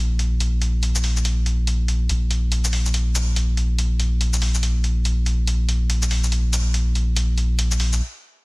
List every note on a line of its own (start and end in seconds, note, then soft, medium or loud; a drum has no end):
0.00 2.08 A#1 medium
0.19 closed hi-hat soft
0.40 closed hi-hat medium
0.62 closed hi-hat soft
0.83 closed hi-hat medium
0.95 shaker medium
1.04 open hi-hat medium
1.16 shaker soft
1.25 closed hi-hat medium
1.46 closed hi-hat soft
1.67 closed hi-hat medium
1.88 closed hi-hat soft
2.09 8.01 A#1 medium
2.09 closed hi-hat medium
2.31 closed hi-hat soft
2.52 closed hi-hat medium
2.64 shaker medium
2.73 open hi-hat medium
2.86 shaker soft
2.94 closed hi-hat medium
3.15 closed hi-hat soft
3.15 shaker medium
3.36 closed hi-hat medium
3.57 closed hi-hat soft
3.78 closed hi-hat medium
4.00 closed hi-hat soft
4.21 closed hi-hat medium
4.33 shaker medium
4.42 open hi-hat medium
4.54 shaker soft
4.63 closed hi-hat medium
4.84 closed hi-hat soft
5.05 closed hi-hat medium
5.26 closed hi-hat soft
5.47 closed hi-hat medium
5.69 closed hi-hat soft
5.90 closed hi-hat medium
6.02 shaker medium
6.11 open hi-hat medium
6.24 shaker soft
6.32 closed hi-hat medium
6.53 closed hi-hat soft
6.53 shaker medium
6.74 closed hi-hat medium
6.95 closed hi-hat soft
7.16 closed hi-hat medium
7.38 closed hi-hat soft
7.59 closed hi-hat medium
7.71 shaker medium
7.80 open hi-hat medium
7.93 shaker soft